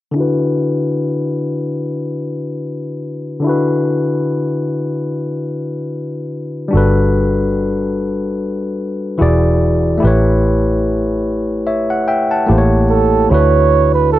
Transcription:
0.11 D3 D4
0.16 E4 F#4
0.20 B4
3.40 D3 D4
3.44 E4 F#4
3.49 B4
6.68 G3 D4
6.73 G1 F#4 A4
6.77 B4
9.18 E1 E3 E4 F#4 G#4
9.22 D5
9.98 A3 E4
10.02 A1 G4 B4
10.07 C#5
11.67 C#5 E5
11.90 F#5
12.08 E5 G5
12.31 F#5 A5
12.46 A1 A3 E4 G4
12.51 A#3 C5
12.58 C#5
12.90 A4
13.30 D2 D3 D4 E4 F#4 C#5
13.34 B4
13.94 B4
14.12 A4

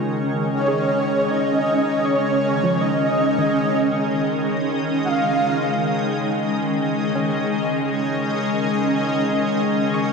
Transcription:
Already playing: C#3 D#3 G#3 C#4 F4 G#4 D#5 F#6
0.55 C#5
0.68 G#4
1.30 D#5
2.05 C#5
2.64 F3
2.80 D#5
3.38 D#3
5.04 F#5
5.08 F5
5.79 C#4
7.15 C#4
9.94 C#6

